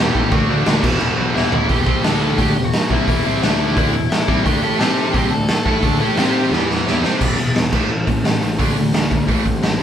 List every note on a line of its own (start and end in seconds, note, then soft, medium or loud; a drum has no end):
0.00 0.15 E2 medium
0.00 0.32 E2 medium
0.00 0.15 B2 loud
0.00 0.31 B2 medium
0.00 0.15 E3 loud
0.00 0.31 E3 loud
0.00 0.14 G4 medium
0.00 0.14 G5 loud
0.15 0.26 A1 loud
0.15 0.32 E2 medium
0.15 0.31 B2 medium
0.15 0.31 E3 medium
0.15 0.32 G4 medium
0.15 0.31 G5 medium
0.15 kick medium
0.32 0.43 D2 loud
0.32 0.49 D3 loud
0.32 0.49 A3 loud
0.32 0.48 D4 loud
0.32 0.97 F#4 medium
0.32 0.97 F#5 loud
0.32 kick loud
0.32 crash medium
0.49 0.61 D2 medium
0.49 0.64 D3 medium
0.49 0.65 A3 medium
0.49 0.65 D4 loud
0.65 0.78 D2 loud
0.65 0.82 D3 medium
0.65 0.82 A3 loud
0.65 0.83 D4 loud
0.65 snare loud
0.65 crash medium
0.82 0.94 E1 loud
0.82 0.99 E2 loud
0.82 0.98 B2 loud
0.82 0.97 E3 loud
0.82 kick loud
0.82 crash loud
0.99 1.12 E1 loud
0.99 1.14 E2 medium
0.99 1.15 B2 loud
0.99 1.16 E3 loud
0.99 crash medium
1.16 1.29 B1 medium
1.16 1.34 E2 medium
1.16 1.33 B2 loud
1.16 1.33 E3 medium
1.34 1.47 E1 medium
1.34 1.50 E2 medium
1.34 1.50 B2 loud
1.34 1.50 E3 loud
1.34 1.68 E4 medium
1.34 1.67 E5 medium
1.34 snare medium
1.51 1.63 A1 medium
1.51 1.66 E2 medium
1.51 1.67 B2 medium
1.51 1.67 E3 medium
1.51 floor tom medium
1.68 1.86 E1 medium
1.68 1.85 E2 medium
1.68 1.85 B2 loud
1.68 1.86 E3 medium
1.68 2.02 G4 medium
1.68 2.05 G5 loud
1.68 kick loud
1.68 open hi-hat medium
1.86 2.03 C2 medium
1.86 2.03 C3 loud
1.86 2.03 G3 medium
1.86 2.03 C4 loud
1.86 kick loud
2.03 2.36 D2 loud
2.03 2.37 D3 medium
2.03 2.38 A3 loud
2.03 2.38 D4 loud
2.03 2.36 A4 medium
2.03 2.39 A5 loud
2.03 snare loud
2.03 open hi-hat medium
2.38 2.54 D2 loud
2.38 2.55 D3 loud
2.38 2.56 A3 loud
2.38 2.56 D4 loud
2.38 2.63 G4 medium
2.38 2.63 G5 loud
2.38 kick loud
2.38 open hi-hat medium
2.55 2.72 E1 medium
2.55 2.69 E2 medium
2.55 2.70 B2 medium
2.64 2.89 F#4 medium
2.64 2.90 F#5 loud
2.73 snare loud
2.73 open hi-hat medium
2.89 3.07 C2 medium
2.89 3.07 C3 medium
2.89 3.07 G3 medium
2.89 3.07 C4 loud
2.89 3.07 E4 medium
2.89 3.05 E5 medium
2.89 kick loud
3.06 3.24 E1 loud
3.06 3.24 E2 medium
3.06 3.24 B2 medium
3.06 3.24 E3 loud
3.06 4.07 E4 medium
3.06 4.06 E5 medium
3.06 kick loud
3.06 open hi-hat medium
3.25 3.41 C2 loud
3.25 3.41 C3 medium
3.25 3.42 G3 loud
3.25 3.42 C4 loud
3.42 3.74 D2 loud
3.42 3.75 D3 loud
3.42 3.76 A3 medium
3.42 3.77 D4 loud
3.42 snare loud
3.42 open hi-hat medium
3.77 3.93 D2 loud
3.77 3.93 D3 loud
3.77 3.94 A3 loud
3.77 3.94 D4 loud
3.77 kick loud
3.77 open hi-hat medium
3.94 4.10 E1 medium
3.94 4.08 E2 medium
3.94 4.08 B2 medium
4.10 4.44 E4 medium
4.10 4.44 E5 medium
4.10 snare loud
4.10 open hi-hat medium
4.28 4.44 C2 loud
4.28 4.44 C3 medium
4.28 4.44 G3 loud
4.28 4.45 C4 loud
4.28 kick loud
4.44 4.62 D2 loud
4.44 4.62 D3 medium
4.44 4.60 A3 loud
4.44 4.62 D4 loud
4.44 4.78 G4 medium
4.44 4.81 G5 loud
4.44 kick loud
4.44 open hi-hat medium
4.61 4.79 A2 loud
4.61 4.79 A3 loud
4.61 4.79 E4 loud
4.61 4.80 A4 loud
4.79 5.12 C3 loud
4.79 5.14 C4 medium
4.79 5.14 G4 loud
4.79 5.12 A4 medium
4.79 5.14 C5 loud
4.79 5.11 A5 medium
4.79 snare loud
4.79 open hi-hat medium
5.12 5.30 C2 loud
5.12 5.30 C3 medium
5.12 5.31 G3 loud
5.12 5.32 C4 loud
5.12 5.30 G4 medium
5.12 5.31 G5 loud
5.12 kick loud
5.12 open hi-hat medium
5.30 5.48 D2 medium
5.30 5.45 D3 medium
5.30 5.45 A3 medium
5.30 5.64 A4 medium
5.30 5.64 A5 loud
5.48 snare loud
5.48 open hi-hat medium
5.65 5.82 A2 loud
5.65 5.82 A3 medium
5.65 5.83 E4 medium
5.65 5.98 A4 medium
5.65 5.83 A4 loud
5.65 6.01 A5 loud
5.65 kick medium
5.83 5.99 D2 loud
5.83 6.00 D3 medium
5.83 5.98 A3 loud
5.83 6.00 D4 loud
5.83 kick loud
5.83 open hi-hat medium
6.00 6.17 A2 loud
6.00 6.15 A3 medium
6.00 6.16 E4 loud
6.00 6.66 G4 medium
6.00 6.17 A4 loud
6.00 6.66 G5 medium
6.16 6.50 C3 loud
6.16 6.51 C4 medium
6.16 6.52 G4 medium
6.16 6.51 C5 loud
6.16 snare loud
6.16 open hi-hat medium
6.51 6.84 E2 loud
6.51 6.84 E3 loud
6.51 6.85 B3 loud
6.51 6.86 E4 loud
6.51 snare medium
6.70 snare medium
6.86 7.02 E2 medium
6.86 7.03 E3 medium
6.86 7.03 B3 loud
6.86 7.04 E4 loud
6.86 snare medium
7.03 7.20 C3 loud
7.03 7.21 C4 medium
7.03 7.21 G4 medium
7.03 7.21 C5 medium
7.03 snare medium
7.21 7.37 E1 medium
7.21 7.37 E2 medium
7.21 7.37 B2 medium
7.21 7.38 E3 medium
7.21 kick loud
7.21 crash loud
7.38 7.55 E1 medium
7.38 7.53 E2 medium
7.38 7.54 B2 medium
7.38 open hi-hat medium
7.55 7.72 E1 medium
7.55 7.71 E2 medium
7.55 7.71 B2 medium
7.55 snare loud
7.55 open hi-hat medium
7.72 7.89 A1 medium
7.72 7.89 A2 medium
7.72 7.89 E3 loud
7.72 7.90 A3 loud
7.72 kick loud
7.72 crash loud
7.90 8.06 A1 medium
7.90 8.05 A2 medium
7.90 8.06 E3 loud
8.06 8.24 A1 medium
8.06 8.23 A2 medium
8.06 8.23 E3 medium
8.06 kick medium
8.06 open hi-hat medium
8.24 8.41 A1 medium
8.24 8.40 A2 medium
8.24 8.40 E3 medium
8.24 snare loud
8.24 open hi-hat medium
8.41 8.59 A1 medium
8.41 8.57 A2 medium
8.41 8.57 E3 medium
8.41 open hi-hat medium
8.59 8.76 D2 loud
8.59 8.75 D3 medium
8.59 8.76 A3 medium
8.59 8.76 D4 loud
8.59 kick loud
8.59 open hi-hat medium
8.76 8.93 D2 medium
8.76 8.92 D3 medium
8.76 8.92 A3 medium
8.76 open hi-hat medium
8.93 9.10 D2 medium
8.93 9.09 D3 medium
8.93 9.09 A3 medium
8.93 snare loud
8.93 open hi-hat medium
9.10 9.27 D2 medium
9.10 9.26 D3 medium
9.10 9.26 A3 medium
9.10 kick medium
9.10 open hi-hat medium
9.27 9.44 A1 medium
9.27 9.43 A2 medium
9.27 9.43 E3 loud
9.27 9.45 A3 loud
9.27 kick loud
9.27 open hi-hat medium
9.44 9.62 A1 medium
9.44 9.60 A2 medium
9.44 9.60 E3 medium
9.44 kick medium
9.44 open hi-hat medium
9.62 9.79 A1 medium
9.62 9.78 A2 medium
9.62 9.78 E3 medium
9.62 snare loud
9.62 open hi-hat medium
9.80 9.83 A1 medium
9.80 9.83 A2 medium
9.80 open hi-hat medium